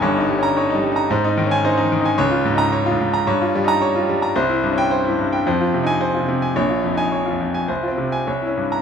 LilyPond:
<<
  \new Staff \with { instrumentName = "Grand piano" } { \time 4/4 \key c \phrygian \tempo 4 = 110 << { r8. bes''8 r4. aes''8 r8. | r8. bes''8 r4. bes''8 r8. | r8. g''8 r4. aes''8 r8. | r8. aes''8 r4. aes''16 r8. bes''16 | } \\ { des''16 ees'16 g8 des''16 ees'16 g16 bes''16 c''16 ees'16 ees8 c''16 ees'16 ees16 aes''16 | des''16 f'16 aes,8 des''16 f'16 aes,16 bes''16 des''16 f'16 g8 des''16 f'16 g16 bes''16 | c''16 e'16 g,8 c''16 e'16 g,16 g''16 c''16 f'16 c8 c''16 f'16 c16 aes''16 | des''16 f'16 f,8 des''16 f'16 f,16 aes''16 c''16 f'16 c8 des''16 e'16 g,8 | } >> }
  \new Staff \with { instrumentName = "Grand piano" } { \clef bass \time 4/4 \key c \phrygian \tuplet 3/2 { <g,, g,>8 ees'8 des'8 ees'8 g8 ees'8 aes,8 ees'8 des'8 ees'8 ees8 ees'8 } | \tuplet 3/2 { des,4 ees'8 r8 aes,4 g,4 ees'8 r8 g4 } | \tuplet 3/2 { c,4 des'8 r8 g,4 f,4 ees'8 r8 c4 } | \tuplet 3/2 { bes,,4 ees'8 r8 f,4 c,8 c'4 c,8 des'4 } | }
>>